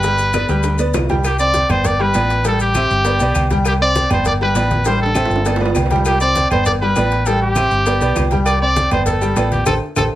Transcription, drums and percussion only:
0.03 high bongo medium
0.03 high conga soft
0.03 high timbale medium
0.03 maracas medium
0.18 high bongo soft
0.18 high conga soft
0.18 maracas medium
0.33 high bongo medium
0.33 high conga medium
0.33 high timbale medium
0.33 claves medium
0.33 maracas medium
0.48 high conga soft
0.48 high timbale medium
0.48 maracas soft
0.63 high bongo medium
0.63 high timbale medium
0.63 maracas medium
0.78 high bongo soft
0.78 high conga soft
0.78 maracas medium
0.94 high bongo medium
0.94 low bongo medium
0.94 high conga medium
0.94 low timbale loud
0.94 claves medium
0.94 maracas medium
1.09 high bongo soft
1.09 high conga medium
1.09 low timbale medium
1.09 maracas soft
1.24 cowbell loud
1.24 high conga soft
1.24 low agogo loud
1.24 claves medium
1.24 maracas medium
1.39 high conga soft
1.39 maracas medium
1.54 cowbell medium
1.54 high conga medium
1.54 low agogo medium
1.54 maracas medium
1.69 cowbell medium
1.69 high conga soft
1.69 low conga medium
1.69 low agogo loud
1.69 claves medium
1.69 maracas soft
1.84 cowbell loud
1.84 high conga soft
1.84 low conga medium
1.84 low agogo medium
1.84 maracas medium
2.00 high conga soft
2.14 cowbell medium
2.14 high conga soft
2.14 low timbale medium
2.14 low agogo loud
2.14 claves medium
2.14 maracas medium
2.30 cowbell medium
2.30 maracas soft
2.45 cowbell loud
2.45 high conga soft
2.45 low agogo medium
2.45 maracas medium
2.60 high conga soft
2.60 maracas medium
2.75 cowbell medium
2.75 high conga medium
2.75 low agogo loud
2.75 claves medium
2.75 maracas medium
2.90 high conga soft
2.90 maracas soft
3.05 cowbell loud
3.05 high conga soft
3.05 low agogo medium
3.05 maracas medium
3.20 high conga soft
3.20 low agogo loud
3.20 maracas medium
3.34 cowbell medium
3.34 high conga medium
3.34 low agogo loud
3.34 claves medium
3.34 maracas medium
3.50 cowbell medium
3.50 high conga medium
3.50 maracas soft
3.65 cowbell loud
3.65 low agogo medium
3.65 claves medium
3.65 maracas medium
3.81 high conga soft
3.95 cowbell medium
3.95 high conga loud
3.95 low agogo medium
3.95 maracas medium
4.10 cowbell medium
4.10 high conga soft
4.10 low conga medium
4.10 low agogo loud
4.10 claves medium
4.10 maracas soft
4.25 cowbell loud
4.25 high conga soft
4.25 low conga medium
4.25 low agogo medium
4.25 maracas medium
4.41 high conga soft
4.55 cowbell medium
4.55 low timbale medium
4.55 low agogo loud
4.55 claves medium
4.55 maracas medium
4.70 cowbell medium
4.70 high conga medium
4.70 maracas soft
4.85 cowbell loud
4.85 high timbale medium
4.85 low agogo medium
4.85 maracas medium
5.00 high conga soft
5.06 high timbale loud
5.14 cowbell medium
5.14 high conga medium
5.14 low agogo loud
5.14 claves medium
5.14 maracas medium
5.25 low timbale medium
5.30 high conga soft
5.30 maracas soft
5.36 high timbale loud
5.45 cowbell loud
5.45 high conga soft
5.45 low timbale medium
5.45 low agogo medium
5.45 maracas medium
5.56 low timbale loud
5.60 high conga soft
5.60 low agogo medium
5.66 low timbale loud
5.75 cowbell medium
5.75 high conga medium
5.75 low timbale medium
5.75 low agogo loud
5.75 claves medium
5.75 maracas medium
5.86 low timbale medium
5.90 cowbell medium
5.90 high conga medium
5.90 maracas soft
5.96 low timbale medium
6.05 cowbell loud
6.05 low agogo loud
6.05 claves medium
6.05 maracas medium
6.20 high conga soft
6.20 maracas medium
6.36 cowbell medium
6.36 high conga medium
6.36 low agogo medium
6.36 maracas medium
6.51 cowbell medium
6.51 high conga soft
6.51 low conga medium
6.51 low agogo loud
6.51 claves medium
6.51 maracas soft
6.66 cowbell loud
6.66 high conga soft
6.66 low conga medium
6.66 low agogo medium
6.66 maracas medium
6.81 high conga soft
6.96 cowbell medium
6.96 high conga soft
6.96 low timbale medium
6.96 low agogo loud
6.96 claves medium
6.96 maracas medium
7.11 cowbell medium
7.11 maracas soft
7.26 cowbell loud
7.26 high conga soft
7.26 low agogo medium
7.26 maracas medium
7.42 high conga soft
7.56 cowbell medium
7.56 high conga loud
7.56 low agogo loud
7.56 claves medium
7.56 maracas medium
7.71 high conga soft
7.71 maracas soft
7.86 cowbell loud
7.86 high conga soft
7.86 low agogo medium
7.86 maracas medium
8.00 high conga soft
8.00 low agogo medium
8.00 maracas medium
8.16 cowbell medium
8.16 high conga medium
8.16 low timbale medium
8.16 low agogo loud
8.16 claves medium
8.16 maracas medium
8.31 cowbell medium
8.31 high conga medium
8.31 maracas soft
8.46 cowbell loud
8.46 high conga soft
8.46 low agogo loud
8.46 claves medium
8.46 maracas medium
8.62 high conga soft
8.76 cowbell medium
8.76 high conga loud
8.76 low agogo medium
8.76 maracas medium
8.91 cowbell medium
8.91 high conga soft
8.91 low conga medium
8.91 low agogo loud
8.91 claves medium
8.91 maracas soft
9.06 cowbell loud
9.06 high conga soft
9.06 low conga medium
9.06 low agogo medium
9.06 maracas medium
9.21 high conga soft
9.21 maracas medium
9.36 cowbell medium
9.36 high conga soft
9.36 low timbale medium
9.36 low agogo loud
9.36 claves medium
9.36 maracas medium
9.52 cowbell medium
9.52 high conga medium
9.52 maracas soft
9.66 cowbell loud
9.66 high conga loud
9.66 high timbale loud
9.66 claves loud
9.66 maracas loud
9.96 cowbell loud
9.96 high conga loud
9.96 high timbale loud
9.96 claves loud
9.96 maracas loud

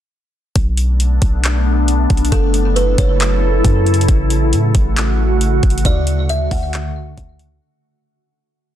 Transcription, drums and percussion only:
0.56 kick loud
0.56 closed hi-hat medium
0.77 closed hi-hat medium
1.00 closed hi-hat medium
1.22 kick loud
1.22 closed hi-hat medium
1.44 clap loud
1.44 closed hi-hat medium
1.88 closed hi-hat medium
2.10 kick medium
2.10 closed hi-hat soft
2.17 closed hi-hat medium
2.25 closed hi-hat medium
2.32 kick loud
2.32 closed hi-hat medium
2.54 closed hi-hat medium
2.76 closed hi-hat medium
2.98 kick loud
2.98 closed hi-hat medium
3.20 clap loud
3.20 closed hi-hat medium
3.65 kick loud
3.65 closed hi-hat medium
3.86 closed hi-hat soft
3.94 closed hi-hat medium
4.01 closed hi-hat medium
4.08 kick loud
4.08 closed hi-hat medium
4.30 closed hi-hat medium
4.53 closed hi-hat medium
4.75 kick loud
4.75 closed hi-hat medium
4.97 clap loud
4.97 closed hi-hat medium
5.41 closed hi-hat medium
5.63 kick medium
5.63 closed hi-hat soft
5.70 closed hi-hat medium
5.78 closed hi-hat medium
5.85 kick loud
5.85 closed hi-hat medium
6.07 closed hi-hat medium
6.29 closed hi-hat medium
6.51 kick loud
6.51 open hi-hat medium
6.73 clap loud
6.73 closed hi-hat medium
7.18 kick loud
7.18 closed hi-hat medium
7.39 closed hi-hat medium

